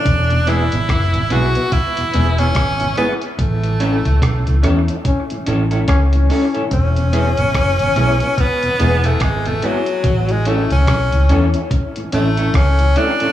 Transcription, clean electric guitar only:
X:1
M:4/4
L:1/16
Q:"Swing 16ths" 1/4=72
K:A
V:1 name="Clean electric guitar"
z2 [B,EG] z3 [B,EG] z3 [B,EG] [B,EG] z2 [B,EG] z | z2 [CEA] z3 [CEA] z3 [CEA] [CEA] z2 [CEA] [CEA] | z2 [B,EG] z3 [B,EG] z3 [B,EG] [B,EG] z2 [B,EG] z | z2 [CEA] z3 [CEA] z3 [CEA] [CEA] z2 [CEA] [CEA] |]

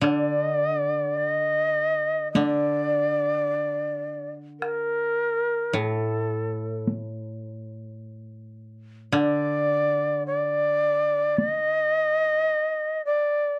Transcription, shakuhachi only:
X:1
M:4/4
L:1/16
Q:1/4=53
K:none
V:1 name="Shakuhachi"
d4 _e4 d6- d z | _B4 A4 z8 | d4 d4 _e6 d2 |]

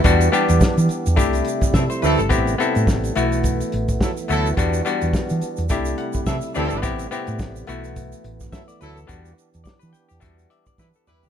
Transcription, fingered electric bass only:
X:1
M:4/4
L:1/16
Q:"Swing 16ths" 1/4=106
K:Em
V:1 name="Fingered electric bass" clef=bass
E,,2 z E,, z E, z E,, C,,2 z2 C, z D,, G,,, | A,,,2 z A,, A,,,2 B,,,4 A,,,2 z2 D,,2 | E,,2 z E,, z E, z E,, C,,2 z2 C, z D,, G,,, | A,,,2 z A,, A,,,2 B,,,4 A,,,2 z2 D,,2 |
E,,2 z E,, z E, z E,, E,,2 z2 E, z E,, D,, |]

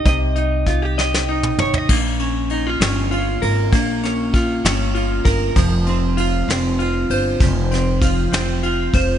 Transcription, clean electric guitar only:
X:1
M:6/8
L:1/16
Q:3/8=65
K:Bbdor
V:1 name="Clean electric guitar"
[C,EGe]2 E2 F G e2 E2 d e | B,2 D2 E F D2 F2 B2 | B,2 D2 F2 D2 F2 B2 | F,2 C2 F2 C2 F2 c2 |
F,2 C2 F2 C2 F2 c2 |]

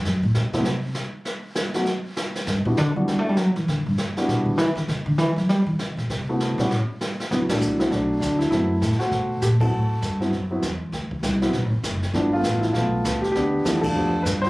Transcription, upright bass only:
X:1
M:4/4
L:1/8
Q:"Swing" 1/4=198
K:Dmix
V:1 name="Upright bass" clef=bass
F,, A,, B,, C,3 z2 | z8 | G,, B,, D, F, (3G, A, G, F, E, | D, G,, z2 B,, D, E, D, |
^C, D, E, F, G, E, C, B,, | C,3 B,, A,, z3 | (3D,, C,, A,,, C,,2 B,,,2 D,,2 | F,,2 A,, z B,,2 _B,,2 |
A,,2 G,,2 F,,2 E,,2 | D,,2 C,,2 (3B,,, A,,, F,,, F,,,2 | G,,,2 A,,,2 B,,,2 ^C,, z | D,,2 E,,2 =F,,2 G,,2 |]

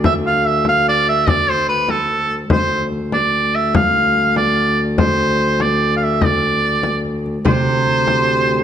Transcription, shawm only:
X:1
M:6/8
L:1/16
Q:3/8=97
K:Dm
V:1 name="Shawm"
e2 f2 e2 f2 d2 e2 | d2 c2 =B2 A4- A/2 z3/2 | c3- c/2 z2 z/2 d4 e2 | f6 d4- d/2 z3/2 |
c6 d3- d/2 f/2 e2 | d8 z4 | c12 |]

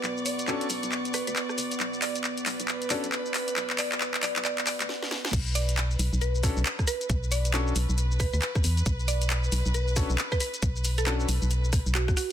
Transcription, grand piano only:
X:1
M:4/4
L:1/16
Q:"Swing 16ths" 1/4=136
K:Bm
V:1 name="Grand piano"
z4 [CDFA]2 z8 z2 | z8 z2 [CDFA] z4 z | z16 | z8 z2 [CDFA] z4 z |
z4 [CDFA]2 z8 z2 | z8 z2 [CDFA] z4 z | z4 [CDFA]2 z8 z2 |]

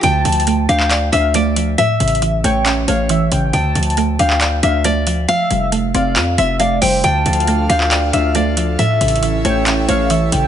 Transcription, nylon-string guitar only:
X:1
M:4/4
L:1/8
Q:1/4=137
K:Dm
V:1 name="Nylon-string guitar"
g3 f2 e d2 | e3 ^c2 c3 | g3 f2 e d2 | f3 d2 e f g |
g3 f2 e d2 | e3 ^c2 c3 |]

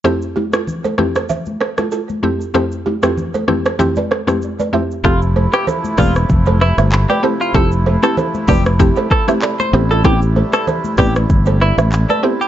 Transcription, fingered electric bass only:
X:1
M:4/4
L:1/16
Q:"Swing 16ths" 1/4=96
K:Flyd
V:1 name="Fingered electric bass" clef=bass
z16 | z16 | F,,,3 z3 E,,,2 F,,,3 G,,,2 z3 | F,,,3 z3 F,,,3 z4 z A,,,2- |
A,,,3 z3 A,,,2 G,,,3 A,,,2 z3 |]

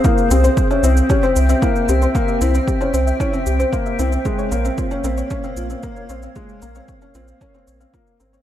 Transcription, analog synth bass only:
X:1
M:4/4
L:1/8
Q:1/4=114
K:Cphr
V:1 name="Analog synth bass" clef=bass
z C,, z C,, z C,, z C,, | z C,, z C,, z C,, z C,, | z B,,, z B,,, z B,,, z B,,, | z B,,, z B,,, z B,,, z A,,, |]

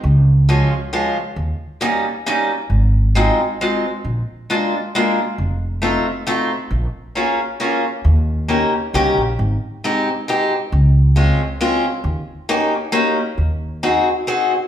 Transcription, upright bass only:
X:1
M:3/4
L:1/8
Q:"Swing" 1/4=135
K:Ab
V:1 name="Upright bass" clef=bass
D,,4 z2 | E,, z4 z | A,,,4 z2 | B,,, z4 z |
F,,,4 z2 | B,,, z4 z | E,,4 C,, B,,, | A,,, z4 z |
D,,4 z2 | E,, z4 z | E,,4 z2 |]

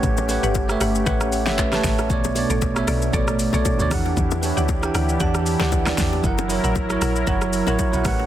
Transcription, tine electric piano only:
X:1
M:4/4
L:1/16
Q:"Swing 16ths" 1/4=116
K:F#phr
V:1 name="Tine electric piano"
[A,GBcf] z [A,GBcf]2 z [A,GBce]2 z [A,GBcf]2 z [A,GBce]2 [A,GBca]2 z | [B,,A,cd]2 [B,,A,cd]2 z [B,,A,ce]2 z [B,,A,cd]2 z [B,,A,cd]2 [B,,A,cd] [E,DGf]2- | [E,DGf] z [E,DGc]2 z [E,DGg]2 z [E,DGa]2 z [E,DGf]2 [E,DGd]2 z | [F,E^Af]2 [F,EAc]2 z [F,EAc]2 z [F,EAc]2 z [F,EAc]2 [F,EAf] [=A,GBcf]2 |]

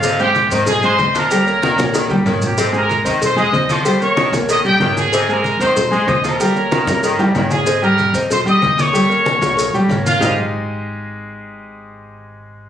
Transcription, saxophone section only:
X:1
M:4/4
L:1/8
Q:1/4=189
K:Ab
V:1 name="Saxophone section" clef=bass
C,3 E,2 A,2 F,- | F,2 E,2 E,2 E,2 | C,3 E,2 A,2 F,- | F,2 E,2 E,2 E,2 |
C,3 E,2 A,2 F,- | F,2 E,2 E,2 E,2 | z8 | z8 |
z8 | z8 |]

